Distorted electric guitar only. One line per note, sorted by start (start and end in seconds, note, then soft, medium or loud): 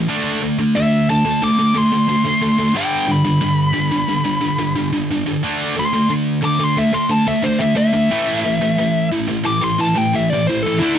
0.08 0.40 D3 loud
0.08 0.40 A3 loud
0.08 0.41 D4 loud
0.42 0.58 D3 medium
0.42 0.58 A3 medium
0.59 0.75 D3 medium
0.59 0.76 A3 medium
0.76 1.06 D3 medium
0.76 1.06 A3 medium
1.10 1.24 D3 medium
1.10 1.24 A3 medium
1.25 1.41 D3 medium
1.25 1.41 A3 medium
1.42 1.58 D3 medium
1.42 1.58 A3 loud
1.59 1.75 D3 medium
1.59 1.74 A3 medium
1.75 1.92 D3 medium
1.75 1.91 A3 medium
1.93 2.08 D3 medium
1.93 2.07 A3 medium
2.08 2.25 D3 medium
2.08 2.24 A3 loud
2.25 2.42 D3 medium
2.25 2.41 A3 loud
2.43 2.58 D3 medium
2.43 2.58 A3 loud
2.59 2.74 D3 medium
2.59 2.75 A3 medium
2.75 3.07 G2 medium
2.75 3.06 D3 loud
2.75 3.07 G3 loud
3.07 3.24 G2 medium
3.07 3.23 D3 medium
3.25 3.40 G2 medium
3.25 3.41 D3 medium
3.41 3.72 G2 medium
3.41 3.72 D3 medium
3.73 3.91 G2 medium
3.73 3.90 D3 medium
3.92 4.08 G2 medium
3.92 4.08 D3 medium
4.09 4.24 G2 medium
4.09 4.24 D3 loud
4.25 4.40 G2 medium
4.25 4.40 D3 medium
4.41 4.58 G2 medium
4.41 4.58 D3 medium
4.59 4.75 G2 medium
4.59 4.75 D3 medium
4.76 4.92 G2 medium
4.76 4.92 D3 medium
4.93 5.10 G2 medium
4.93 5.10 D3 loud
5.11 5.25 G2 medium
5.11 5.25 D3 medium
5.26 5.43 G2 medium
5.26 5.42 D3 medium
5.43 5.75 D3 loud
5.43 5.75 A3 loud
5.43 5.75 D4 loud
5.76 5.92 D3 medium
5.76 5.92 A3 medium
5.93 6.08 D3 medium
5.93 6.08 A3 medium
6.09 6.40 D3 medium
6.09 6.40 A3 medium
6.42 6.58 D3 medium
6.42 6.58 A3 medium
6.59 6.76 D3 medium
6.59 6.76 A3 medium
6.77 6.92 D3 medium
6.77 6.92 A3 loud
6.93 7.08 D3 medium
6.93 7.08 A3 medium
7.09 7.26 D3 medium
7.09 7.26 A3 medium
7.27 7.42 D3 medium
7.27 7.42 A3 medium
7.43 7.60 D3 medium
7.43 7.59 A3 medium
7.61 7.75 D3 medium
7.61 7.74 A3 loud
7.76 7.93 D3 medium
7.76 7.92 A3 medium
7.93 8.11 D3 medium
7.93 8.11 A3 medium
8.11 8.43 A2 loud
8.11 8.43 E3 loud
8.11 8.43 A3 loud
8.46 8.61 A2 medium
8.46 8.61 E3 medium
8.62 8.77 A2 medium
8.62 8.77 E3 medium
8.79 9.09 A2 medium
8.79 9.09 E3 medium
9.12 9.28 A2 medium
9.12 9.27 E3 medium
9.28 9.43 A2 medium
9.28 9.43 E3 medium
9.44 9.60 A2 medium
9.44 9.60 E3 loud
9.61 9.78 A2 medium
9.61 9.78 E3 medium
9.79 9.95 A2 medium
9.79 9.94 E3 loud
9.96 10.13 A2 medium
9.96 10.13 E3 medium
10.15 10.30 A2 medium
10.15 10.30 E3 loud
10.34 10.48 A2 medium
10.34 10.48 E3 loud
10.49 10.65 A2 medium
10.49 10.65 E3 medium
10.66 10.81 A2 medium
10.66 10.82 E3 loud
10.81 10.99 D3 loud
10.81 10.99 A3 loud
10.81 10.99 D4 loud